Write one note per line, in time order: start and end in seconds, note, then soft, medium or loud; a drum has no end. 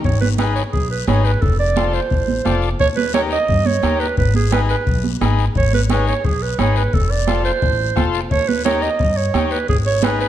0.04 0.60 G#1 loud
0.04 0.20 C#5 medium
0.04 bombo low medium
0.04 high conga soft
0.04 long guiro medium
0.21 0.29 B4 medium
0.21 high conga medium
0.38 0.63 D#4 medium
0.38 0.63 G#4 medium
0.38 0.54 B4 medium
0.38 0.63 B4 medium
0.38 bombo rim medium
0.38 high conga medium
0.38 short guiro medium
0.55 0.63 C#5 medium
0.55 short guiro medium
0.72 1.01 B1 medium
0.72 0.89 G#4 medium
0.72 bombo low medium
0.72 high conga soft
0.72 long guiro medium
0.90 1.06 B4 medium
1.07 1.35 G#1 medium
1.07 1.32 D#4 medium
1.07 1.32 G#4 medium
1.07 1.32 B4 medium
1.07 1.26 C#5 medium
1.07 bombo rim medium
1.07 high conga medium
1.07 short guiro medium
1.25 1.43 B4 medium
1.25 short guiro medium
1.42 1.97 F1 loud
1.42 1.59 A4 medium
1.42 bombo low medium
1.42 high conga soft
1.42 long guiro medium
1.59 1.96 D5 loud
1.76 2.00 F4 medium
1.76 2.01 A4 medium
1.76 2.01 C5 medium
1.76 bombo rim medium
1.76 high conga loud
1.76 short guiro medium
1.93 2.63 C5 medium
1.93 short guiro medium
2.10 2.39 A1 medium
2.10 bombo low medium
2.10 high conga soft
2.10 long guiro medium
2.28 high conga medium
2.45 2.73 F1 medium
2.45 2.69 F4 medium
2.45 2.70 A4 medium
2.45 2.70 D5 medium
2.45 bombo rim medium
2.45 high conga medium
2.45 short guiro medium
2.62 short guiro medium
2.80 3.35 D#2 medium
2.80 2.88 C#5 medium
2.80 bombo low medium
2.80 high conga soft
2.80 long guiro medium
2.96 3.13 B4 medium
2.96 high conga medium
3.13 3.38 D#4 medium
3.13 3.38 G4 medium
3.13 3.38 A#4 medium
3.13 3.22 C#5 medium
3.13 bombo rim medium
3.13 high conga medium
3.13 short guiro medium
3.31 3.68 D#5 medium
3.31 short guiro medium
3.48 3.76 G2 medium
3.48 bombo low medium
3.48 high conga soft
3.48 long guiro medium
3.66 4.01 C#5 loud
3.66 high conga medium
3.82 4.11 D#2 medium
3.82 4.07 D#4 medium
3.82 4.07 G4 medium
3.82 4.07 A#4 medium
3.82 bombo rim medium
3.82 high conga medium
3.82 short guiro medium
4.00 4.17 B4 medium
4.00 short guiro medium
4.17 4.73 G#1 medium
4.17 4.34 B4 medium
4.17 bombo low medium
4.17 high conga soft
4.17 long guiro medium
4.34 4.51 G#4 medium
4.34 high conga medium
4.52 4.76 D#4 medium
4.52 4.76 G#4 medium
4.52 4.76 B4 medium
4.52 4.61 B4 medium
4.52 bombo rim medium
4.52 high conga loud
4.52 short guiro medium
4.69 5.09 B4 medium
4.69 short guiro medium
4.87 5.14 B1 loud
4.87 bombo low medium
4.87 high conga soft
4.87 long guiro medium
5.04 high conga medium
5.21 5.49 G#1 medium
5.21 5.45 D#4 medium
5.21 5.45 G#4 medium
5.21 5.46 B4 medium
5.21 bombo rim medium
5.21 high conga medium
5.21 short guiro medium
5.39 short guiro medium
5.55 6.11 G#1 medium
5.55 5.72 C#5 medium
5.55 bombo low medium
5.55 high conga soft
5.55 long guiro medium
5.73 5.82 B4 medium
5.73 high conga medium
5.90 6.14 D#4 medium
5.90 6.14 G#4 medium
5.90 6.07 B4 medium
5.90 6.15 C#5 medium
5.90 bombo rim medium
5.90 high conga medium
5.90 short guiro medium
6.07 6.27 C#5 medium
6.07 short guiro medium
6.24 6.52 B1 medium
6.24 6.44 G#4 medium
6.24 bombo low medium
6.24 high conga soft
6.24 long guiro medium
6.42 6.59 B4 medium
6.58 6.86 G#1 medium
6.58 6.83 D#4 medium
6.58 6.83 G#4 medium
6.58 6.83 B4 medium
6.58 6.78 C#5 medium
6.58 bombo rim medium
6.58 high conga medium
6.58 short guiro medium
6.76 6.96 B4 medium
6.76 short guiro medium
6.93 7.49 F1 medium
6.93 7.12 A4 medium
6.93 bombo low medium
6.93 high conga soft
6.93 long guiro medium
7.11 7.44 D5 medium
7.27 7.52 F4 medium
7.27 7.52 A4 medium
7.27 7.52 C5 medium
7.27 bombo rim medium
7.27 high conga medium
7.27 short guiro medium
7.45 8.10 C5 medium
7.45 short guiro medium
7.62 7.90 A1 loud
7.62 bombo low medium
7.62 high conga soft
7.62 long guiro medium
7.96 8.24 F1 medium
7.96 8.20 F4 medium
7.96 8.20 A4 medium
7.96 8.21 C5 medium
7.96 bombo low medium
7.96 bombo rim medium
7.96 high conga medium
7.96 short guiro medium
8.14 short guiro medium
8.31 8.86 D#2 loud
8.31 8.50 C#5 loud
8.31 bombo low medium
8.31 high conga soft
8.31 long guiro medium
8.48 8.64 B4 medium
8.48 high conga medium
8.65 8.89 D#4 medium
8.65 8.90 G4 medium
8.65 8.90 A#4 medium
8.65 8.84 C#5 medium
8.65 bombo rim medium
8.65 high conga medium
8.65 short guiro medium
8.82 9.18 D#5 loud
8.82 short guiro medium
8.99 9.28 G2 medium
8.99 bombo low medium
8.99 high conga soft
8.99 long guiro medium
9.17 9.53 C#5 medium
9.34 9.62 D#2 medium
9.34 9.58 D#4 medium
9.34 9.59 G4 medium
9.34 9.59 C#5 medium
9.34 bombo rim medium
9.34 high conga medium
9.34 short guiro medium
9.51 9.68 B4 medium
9.51 short guiro medium
9.68 10.24 G#1 medium
9.68 9.77 G#4 medium
9.68 bombo low medium
9.68 high conga soft
9.68 long guiro medium
9.86 10.06 C#5 medium
10.02 10.27 D#4 medium
10.02 10.27 G#4 medium
10.02 10.28 B4 medium
10.02 10.20 B4 medium
10.02 bombo rim medium
10.02 high conga loud
10.02 short guiro medium
10.20 10.28 B4 medium
10.20 short guiro medium